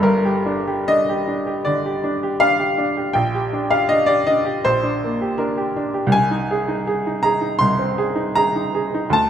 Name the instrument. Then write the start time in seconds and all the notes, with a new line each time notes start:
upright piano
0.00 G1 G2 A#4
0.25 G4
0.46 D4
0.67 G4
0.88 D4 D#5
1.09 G4
1.28 D4
1.47 G4
1.65 D3 D5
1.86 G4
2.04 D4
2.23 G4
2.40 D4 F5
2.59 G4
2.78 D4
2.97 G4
3.13 A#1 G5
3.35 G4
3.53 D4
3.71 G4 F5
3.89 D4 D#5
4.06 G4 D5
4.27 D4 D#5
4.45 G4
4.65 A#1 C5
4.83 D4
5.04 A#3
5.21 G4
5.38 D4 A#4
5.57 G4
5.76 D4
5.94 G4
6.07 C2
6.12 G#5
6.31 D#4
6.51 G#4
6.68 D#4
6.87 G#4
7.07 D#4
7.23 G#4 A#5
7.41 D#4
7.59 C2 C6
7.79 C4
7.98 G#4
8.16 D#4
8.35 G#4 A#5
8.56 D#4
8.75 G#4
8.94 D#4
9.10 D2 A5